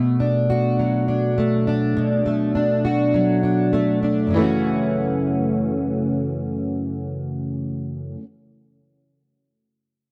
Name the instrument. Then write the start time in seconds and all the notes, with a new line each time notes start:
steel-string acoustic guitar
Already playing: B2 A3 F#4
0.20 D4
0.50 F#4
0.79 F#3
1.08 D4
1.38 A3
1.67 D4
1.97 B2
2.26 A3
2.55 D4
2.85 F#4
3.14 F#3
3.43 D4
3.73 A3
4.03 D4
4.27 F#2 C#3
4.34 E3 A3
4.40 C#4 F#4